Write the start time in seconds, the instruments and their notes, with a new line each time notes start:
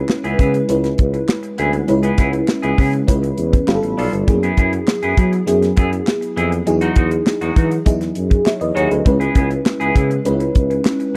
Already playing: fm electric piano G#3 C#4 E4 B4
0.09 muted clean electric guitar stroke, snare, clap
0.24 tuba C#2, clean electric guitar B3 E4 G#4, closed hi-hat
0.39 tuba C#3, clean electric guitar B3 E4 G#4, kick, closed hi-hat
0.54 muted clean electric guitar stroke, closed hi-hat
0.69 tuba C#2, fm electric piano G#3 C#4 E4 B4, muted clean electric guitar stroke, closed hi-hat
0.84 muted clean electric guitar stroke, snare, closed hi-hat
0.98 tuba C#2, kick, closed hi-hat
1.14 muted clean electric guitar stroke, closed hi-hat
1.29 muted clean electric guitar stroke, snare, clap
1.43 muted clean electric guitar stroke, closed hi-hat
1.58 tuba D2, clean electric guitar B3 E4 G#4, closed hi-hat
1.73 muted clean electric guitar stroke, closed hi-hat
1.88 tuba C#2, fm electric piano G#3 C#4 E4 B4, muted clean electric guitar stroke, closed hi-hat
2.03 clean electric guitar B3 E4 G#4, closed hi-hat
2.18 tuba C#2, clean electric guitar B3 E4 G#4, kick, snare, closed hi-hat
2.33 muted clean electric guitar stroke, closed hi-hat
2.48 muted clean electric guitar stroke, snare, clap
2.62 tuba C#2, clean electric guitar B3 E4 G#4, closed hi-hat
2.78 tuba C#3, clean electric guitar B3 E4 G#4, kick, open hi-hat
2.93 muted clean electric guitar stroke, closed hi-hat
3.07 tuba C#2, fm electric piano G#3 C#4 E4 B4, muted clean electric guitar stroke, kick, closed hi-hat
3.23 muted clean electric guitar stroke, closed hi-hat
3.38 tuba E2, closed hi-hat
3.53 muted clean electric guitar stroke, kick, closed hi-hat
3.67 tuba G1, fm electric piano G3 B3 F4 G4 B5, muted clean electric guitar stroke, snare, clap
3.75 fm electric piano A4
3.83 tuba A1, muted clean electric guitar stroke, closed hi-hat
3.98 tuba B1, clean electric guitar B3 F4 A4, fm electric piano D5, open hi-hat
4.13 tuba G1, muted clean electric guitar stroke, closed hi-hat
4.27 tuba F#2, fm electric piano F#3 A#3 E4 G#4, muted clean electric guitar stroke, kick, closed hi-hat
4.34 fm electric piano B3
4.43 clean electric guitar B3 E4 G#4, closed hi-hat
4.57 tuba F#2, clean electric guitar B3 E4 G#4, kick, closed hi-hat
4.73 muted clean electric guitar stroke, closed hi-hat
4.88 muted clean electric guitar stroke, snare, clap
5.03 tuba F#2, clean electric guitar B3 E4 G#4, closed hi-hat
5.17 tuba F#3, clean electric guitar B3 E4 G#4, kick, closed hi-hat
5.33 muted clean electric guitar stroke, closed hi-hat
5.46 tuba F#2, fm electric piano F#3 B3 E4 G#4, muted clean electric guitar stroke, closed hi-hat
5.62 muted clean electric guitar stroke, snare, closed hi-hat
5.77 tuba F#2, clean electric guitar B3 E4 G#4, kick, closed hi-hat
5.91 muted clean electric guitar stroke, closed hi-hat
6.06 muted clean electric guitar stroke, snare, clap
6.21 muted clean electric guitar stroke, closed hi-hat
6.36 tuba F2, clean electric guitar B3 E4 G#4, closed hi-hat
6.51 muted clean electric guitar stroke, closed hi-hat
6.66 tuba E2, fm electric piano F#3 D#4 E4 G#4, muted clean electric guitar stroke, closed hi-hat
6.81 clean electric guitar G#3 D#4 F#4, closed hi-hat
6.96 tuba E2, clean electric guitar G#3 D#4 F#4, kick, closed hi-hat
7.11 muted clean electric guitar stroke, closed hi-hat
7.26 muted clean electric guitar stroke, snare, clap
7.41 tuba E2, clean electric guitar G#3 D#4 F#4, closed hi-hat
7.56 tuba E3, clean electric guitar G#3 D#4 F#4, kick, closed hi-hat
7.71 muted clean electric guitar stroke, closed hi-hat
7.86 tuba E2, fm electric piano F#3 D#4 E4 G#4, muted clean electric guitar stroke, kick, closed hi-hat
8.01 muted clean electric guitar stroke, snare, closed hi-hat
8.15 tuba F#2, closed hi-hat
8.30 muted clean electric guitar stroke, kick, closed hi-hat
8.45 fm electric piano C#5 E5, muted clean electric guitar stroke, snare, clap
8.60 tuba E2, fm electric piano B4 D#5, muted clean electric guitar stroke, closed hi-hat
8.75 tuba D#2, clean electric guitar G#3 D#4 F#4, fm electric piano A#4 C#5, closed hi-hat
8.90 tuba D2, fm electric piano G#4 B4, muted clean electric guitar stroke, closed hi-hat
9.05 tuba C#2, fm electric piano G#3 C#4 E4 B4, muted clean electric guitar stroke, kick, closed hi-hat
9.20 clean electric guitar B3 E4 G#4, closed hi-hat
9.35 tuba C#2, clean electric guitar B3 E4 G#4, kick, closed hi-hat
9.50 muted clean electric guitar stroke, closed hi-hat
9.66 muted clean electric guitar stroke, snare, clap
9.80 tuba C#2, clean electric guitar B3 E4 G#4, closed hi-hat
9.95 tuba C#3, clean electric guitar B3 E4 G#4, kick, closed hi-hat
10.10 muted clean electric guitar stroke, closed hi-hat
10.25 tuba C#2, fm electric piano G#3 C#4 D#4 B4, muted clean electric guitar stroke, closed hi-hat
10.32 fm electric piano E4
10.40 muted clean electric guitar stroke, closed hi-hat
10.55 tuba C#2, kick, closed hi-hat
10.70 muted clean electric guitar stroke, closed hi-hat
10.85 muted clean electric guitar stroke, snare, clap
11.00 muted clean electric guitar stroke, closed hi-hat